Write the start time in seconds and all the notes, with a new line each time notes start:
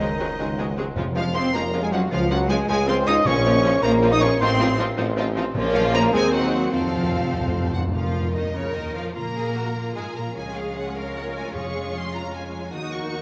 Already playing: C#2 C#3 D#3 D#4 G#4 D#5
0.00 F#3 G#3 C4 G#4
0.19 F#3 G#3 C4 G#4
0.38 C#2 F#3 G#3 C4 G#4 C5
0.57 F#3 G#3 C4 G#4 F#5
0.76 F#3 G#3 C4 G#4 C5
0.96 F1 F2 F3 G#3 C#4 F4
1.15 F3 G#3 C#4 F4 F5
1.34 F3 G#3 C4 C#4 F4 G#4 C5 C6
1.53 F1 F2 F3 G#3 A#3 C#4 F4 A#4 C#5 A#5
1.72 F3 G#3 C#4 F4 F5
1.82 G#3 G#4 G#5
1.92 F3 F#3 G#3 C#4 F4 F#4 C#5 F#5
2.10 C#2 C#3 F3 G#3 C#4 F4 F5
2.29 F3 F#3 G#3 C#4 F4 F#4 F#5
2.49 F3 G#3 C#4 F4 G#4 G#5
2.68 C#2 F3 G#3 C#4 F4 G#4 C#5 G#5
2.87 F3 G#3 C4 C#4 F4 C5 F5 C6
3.06 F3 G#3 C#4 D#4 F4 C#5 D#5 D#6
3.25 A#1 A#2 F3 A#3 C#4 F4 C#5 C#6
3.45 F3 A#3 C#4 F4
3.64 F3 A#3 C#4 F4
3.82 A#1 F3 A#3 C#4 F4 A#4 A#5
4.02 F3 A#3 C#4 F4 C#5
4.11 D#4 D#5 D#6
4.21 F3 A#3 C#4 F4 A#4 C#5 C#6
4.39 A1 A2 F3 C4 D#4 F4 C5 C6
4.59 F3 C4 D#4 F4
4.78 F3 C4 D#4 F4
4.97 A1 F3 C4 D#4 F4 C5
5.16 F3 C4 D#4 F4 D#5
5.35 F3 C4 D#4 F4 C5
5.55 A#1 A#2 F3 A#3 C#4 F4
5.74 F3 A#3 F4 F5
5.93 A#3 C#4 F4 A#4 A#5
6.13 D#2 D#3 G#3 C4 D#4 G#4 G#5
6.32 F#3 C4 F#4 F#5
6.53 C4 C5
6.72 F1 F2 F3 C4 F4 A4 F5
6.81 F2
6.88 F2
6.93 F2 C4
7.03 F2
7.11 F2 A4
7.19 F2
7.26 F2
7.33 F2 C5
7.40 F2
7.48 F2
7.54 F2 C6
7.63 F2
7.71 F2 C5 F#5
7.78 F2
7.86 F2
7.93 F2 A#2 F3 F4 F5
8.05 F3
8.15 C#4
8.24 A#4
8.34 D#2 D#3 D#4 F4 D#5
8.45 C#5
8.54 C#2 C#3 C#4 A#4 C#5 A#5
8.64 F4
8.74 D#2 D#3 D#4 A#4 D#5
8.85 C#4
8.94 F2 F3 A#3 F4 F5
9.05 F3
9.14 A#2 C#3 A#3 F4 A#4 A#5
9.26 F3
9.36 F4 G#4
9.46 A#4
9.56 F4 F#4
9.66 F5
9.75 F4 A#5
9.86 F4
9.95 G#2 G#3 G#4 A#4 G#5
10.05 F4
10.15 A#2 A#3 C#4 A#4 A#5
10.26 F3
10.35 C#2 C#3 G#3 C#4 F4 G#4 C#5 G#5
10.46 G#3
10.56 F4 F5
10.66 C#5
10.75 G#4 F#5
10.86 F5
10.96 A#4 F5 C#6
11.06 G#4
11.16 C#5 F#5
11.26 F4
11.35 C#4 G#5
11.45 G#3
11.55 F2 F3 G#4 C#6
11.65 F4
11.75 C#5
11.84 G#4
11.94 F5 C6
12.04 C#6
12.14 F4 G#5 A#5
12.23 F5
12.33 G#4 G#5
12.44 C#5
12.53 G#3
12.63 F4
12.72 D#2 D#3 A#3 D#4 F#4 A#4 D#6
12.83 A#3
12.93 F#4 C#6
13.03 A#4
13.12 F#4